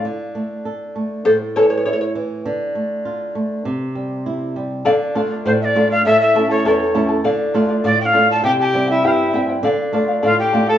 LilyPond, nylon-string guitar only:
\new Staff \with { instrumentName = "Nylon-string guitar" } { \time 2/4 \key d \minor \tempo 4 = 100 d8 a8 a'8 a8 | a,8 e8 e'8 e8 | d8 a8 f'8 a8 | c8 g8 e'8 g8 |
d8 <a d' f'>8 a,8 <a d' f'>8 | a,8 <a cis' e'>8 e,8 <a cis' e'>8 | d8 <a d' f'>8 a,8 <a d' f'>8 | c8 <g c' e'>8 g,8 <g c' e'>8 |
d8 <a d' f'>8 a,8 <a d' f'>8 | }